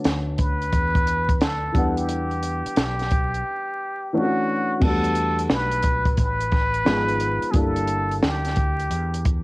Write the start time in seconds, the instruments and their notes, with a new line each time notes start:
Already playing: grand piano D3 A3 B3 C#4 F#4
0.04 fretless electric bass D2, snare, closed hi-hat
0.38 muted trumpet B4, kick, closed hi-hat
0.62 closed hi-hat
0.72 fretless electric bass E2, kick, closed hi-hat
0.95 kick, closed hi-hat
1.07 closed hi-hat
1.29 kick, closed hi-hat
1.41 fretless electric bass D2, muted trumpet A4, snare, closed hi-hat
1.72 fretless electric bass E2, grand piano E3 G3 B3, kick, closed hi-hat
1.76 grand piano D4 F#5
1.97 muted trumpet G4, closed hi-hat
2.09 closed hi-hat
2.31 closed hi-hat
2.43 closed hi-hat
2.66 muted fretless electric bass stroke, closed hi-hat
2.76 fretless electric bass B1, snare, closed hi-hat
2.99 snare, closed hi-hat
3.11 kick, closed hi-hat
3.34 closed hi-hat
4.13 grand piano E3 A3 C#4 D4 F4, muted trumpet F#4
4.22 grand piano F#4
4.80 fretless electric bass E2, grand piano F#3 A3 B3, muted trumpet A4, kick, crash
4.84 grand piano G3 D4 F#4
5.04 closed hi-hat
5.15 closed hi-hat
5.39 closed hi-hat
5.50 fretless electric bass B1, muted trumpet B4, snare
5.72 closed hi-hat
5.83 kick, closed hi-hat
6.06 kick, closed hi-hat
6.17 fretless electric bass A1, muted trumpet B4, kick, closed hi-hat
6.41 closed hi-hat
6.52 kick, snare, closed hi-hat
6.74 closed hi-hat
6.85 fretless electric bass G#1, grand piano F3 G#3 B3 D#4 G#4, snare
7.09 closed hi-hat
7.20 closed hi-hat
7.42 muted fretless electric bass stroke, closed hi-hat
7.51 fretless electric bass G1, grand piano G3 A#3 D4, muted trumpet G#4, kick, closed hi-hat
7.56 grand piano E4 A4, muted trumpet A4
7.76 closed hi-hat
7.87 closed hi-hat
8.11 closed hi-hat
8.23 fretless electric bass D2, muted trumpet G4, snare
8.45 snare, closed hi-hat
8.56 kick, closed hi-hat
8.79 closed hi-hat
8.90 fretless electric bass E2, closed hi-hat
9.14 closed hi-hat
9.25 kick, closed hi-hat